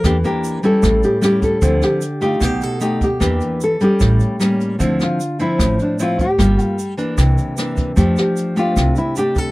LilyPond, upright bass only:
\new Staff \with { instrumentName = "Upright bass" } { \clef bass \time 4/4 \key d \minor \tempo 4 = 151 e,8 r4. a,,8 r4. | d,8 r4. b,,8 r4. | e,8 r4. a,,8 r4. | d,8 r4. a,,8 r4. |
g,,8 r4. c,8 r4. | f,8 r4. c,8 r4. | }